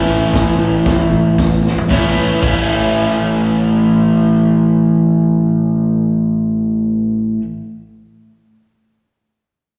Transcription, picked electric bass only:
0.07 A1
0.34 A1
0.57 A1
0.86 A1
1.11 A1
1.38 A1
1.91 A1
2.43 A1

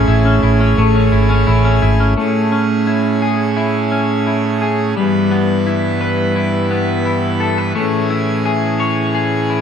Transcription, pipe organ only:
Already playing: A3 C#4 G#4
2.18 A2 A3 C#4 G#4
4.96 G2 E3 B3 B4
7.75 A2 C#4 G#4

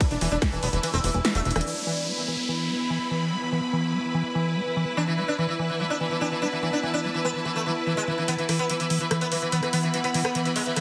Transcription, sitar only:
0.01 E3
0.11 D4
0.21 E3
0.32 D4
0.42 E3
0.52 E3
0.63 B3
0.73 E3
0.83 E3
0.94 C4
1.04 E3
1.25 E3
1.35 A3
1.45 E3
1.56 E3
4.97 D4
5.07 E3
5.18 E3
5.28 D4
5.38 E3
5.49 E3
5.69 E3
5.80 E3
5.90 D4
6.01 E3
6.11 E3
6.21 D4
6.32 E3
6.42 D4
6.52 E3
6.63 E3
6.73 D4
6.83 E3
6.94 D4
7.04 E3
7.14 E3
7.25 B3
7.35 E3
7.45 E3
7.56 A3
7.66 E3
7.87 E3
7.97 G#3
8.07 E3
8.18 E3
8.28 B3
8.38 E3
8.49 E3
8.59 B3
8.70 E3
8.80 E3
9.01 E3
9.11 E3
9.21 B3
9.32 E3
9.42 E3
9.52 B3
9.63 E3
9.73 B3
9.83 E3
9.94 E3
10.04 B3
10.14 E3
10.25 B3
10.35 E3
10.45 E3
10.56 G#3
10.66 E3
10.76 E3

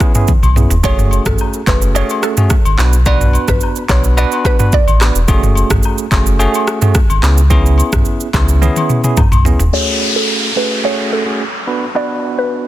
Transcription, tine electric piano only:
Already playing: B3 C#4 E4 G#4
0.15 B3 C#4 E4 G#4
0.56 B3 C#4 E4 G#4
0.84 A3 C#4 F#4 G#4
1.67 A3 C#4 F#4 G#4
1.95 A3 C#4 F#4 G#4
2.37 A3 C#4 F#4 G#4
2.78 B3 D4 F#4 B4
3.06 B3 D4 F#4 B4
3.89 B3 D4 F#4 B4
4.17 B3 D4 F#4 B4
4.59 B3 D4 F#4 B4
5.00 B3 D4 F#4 B4
5.28 A3 C#4 F#4 G#4
6.11 A3 C#4 F#4 G#4
6.39 A3 C#4 F#4 G#4
6.81 A3 C#4 F#4 G#4
7.23 B3 C#4 E4 G#4
7.50 B3 C#4 E4 G#4
8.34 B3 C#4 E4 G#4
8.62 B3 C#4 E4 G#4
9.04 B3 C#4 E4 G#4
9.45 B3 C#4 E4 G#4
9.73 A3 C#4 F#4 G#4
10.56 A3 C#4 F#4 G#4
10.84 A3 C#4 F#4 G#4
11.26 A3 C#4 F#4 G#4
11.67 B3 D4 F#4 B4
11.95 B3 D4 F#4 B4

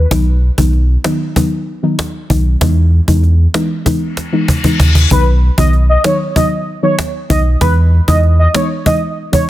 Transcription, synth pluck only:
0.11 D#3 F#3 B3 D#4
0.58 D#3 F#3 B3 D#4
1.05 D#3 F#3 B3 D#4
1.36 D#3 F#3 B3 D#4
1.83 D#3 F#3 B3 D#4
2.30 D#3 F#3 B3 D#4
2.61 E3 G#3 B3 D#4
3.08 E3 G#3 B3 D#4
3.54 E3 G#3 B3 D#4
3.85 E3 G#3 B3 D#4
4.33 E3 G#3 B3 D#4
4.64 E3 G#3 B3 D#4
5.11 D#3 F#3 B3 D#4
5.58 D#3 F#3 B3 D#4
6.04 D#3 F#3 B3 D#4
6.36 D#3 F#3 B3 D#4
6.83 D#3 F#3 B3 D#4
7.29 D#3 F#3 B3 D#4
7.61 E3 G#3 B3 D#4
8.07 E3 G#3 B3 D#4
8.54 E3 G#3 B3 D#4
8.85 E3 G#3 B3 D#4
9.32 E3 G#3 B3 D#4

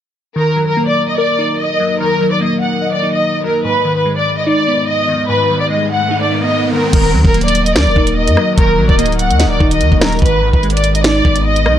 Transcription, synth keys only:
0.36 D#3
0.56 F#3
0.77 A#3
1.18 A#4
1.39 D#4
1.80 F#3
2.00 D#3
2.21 F#3
2.41 A#3
2.81 D#5
3.03 D#4
3.44 F#3
3.64 G#2
3.85 D#3
4.05 G#3
4.47 D#4
4.67 B3
5.08 D#3
5.29 G#2
5.50 D#3
5.70 G#3
6.11 D#4
6.32 B3
6.73 D#3
6.93 D#3
7.14 F#3
7.34 A#3
7.76 A#4
7.96 D#4
8.37 F#3
8.58 D#3
8.79 F#3
8.99 A#3
9.39 D#5
9.60 D#4
10.02 F#3
10.22 G#2
10.42 D#3
10.63 G#3
11.04 D#4
11.25 B3
11.66 D#3

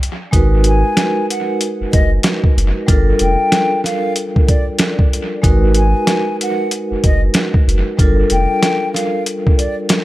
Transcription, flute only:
0.67 G#5
1.30 F#5
1.92 D#5
3.21 G5
3.84 F5
4.47 D5
5.77 G#5
6.42 F#5
7.04 D#5
8.31 G5
8.93 F5
9.57 D5

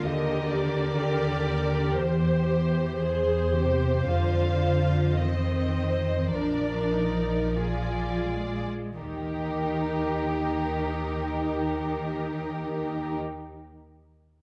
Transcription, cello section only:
0.04 D3
1.99 E3
3.53 C3
4.07 D3
5.17 D#3
6.33 F3
8.28 G#3
8.98 D#3

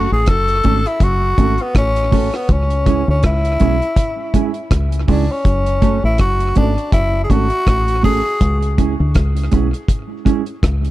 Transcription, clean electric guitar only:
0.64 A3 C#4 F#4 A4
1.38 A3 C#4 F#4 A4
2.11 A3 C#4 F#4 A4
2.33 muted clean electric guitar stroke
2.86 G#3 C#4 E4 G#4
3.60 G#3 C#4 E4 G#4
4.34 G#3 C#4 E4 G#4
5.08 G#3 C#4 E4 G#4
5.82 A3 C#4 F#4 A4
6.56 A3 C#4 F#4 A4
7.30 A3 C#4 F#4 A4
8.03 A3 C#4 F#4 A4
8.78 G#3 C#4 E4 G#4
9.52 G#3 C#4 E4 G#4
10.25 G#3 C#4 E4 G#4

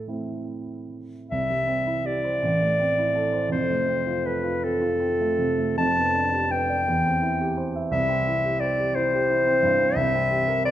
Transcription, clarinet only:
1.31 E5
2.06 D5
3.52 C5
4.26 B4
4.64 A4
5.78 A5
6.51 G5
7.92 E5
8.60 D5
8.95 C5
9.96 E5
10.65 D5

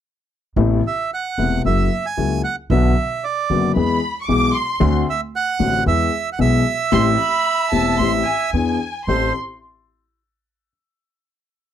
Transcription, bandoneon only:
0.87 E5
1.14 F#5
1.66 E5
2.06 G#5
2.44 F#5
2.71 E5
3.24 D5
5.10 E5
5.36 F#5
5.88 E5
6.33 F#5
6.41 E5
9.09 C5

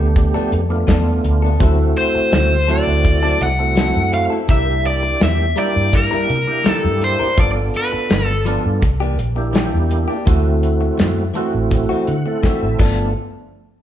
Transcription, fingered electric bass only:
0.00 D2
0.35 muted fingered electric bass stroke
0.52 F2
0.88 E2
1.24 D2
1.60 D2
2.15 muted fingered electric bass stroke
2.33 D2
2.87 D2
3.41 C2
3.96 F#2
4.49 C2
5.21 E2
5.76 G2
6.12 muted fingered electric bass stroke
6.30 C3
6.66 muted fingered electric bass stroke
6.84 G2
7.21 muted fingered electric bass stroke
7.38 G1
7.93 muted fingered electric bass stroke
8.11 G1
8.66 G2
8.82 C2
9.19 A#1
9.74 E2
10.27 D2
11.00 F#2
11.54 A1
12.08 D3
12.44 muted fingered electric bass stroke
12.63 A1
12.80 G1

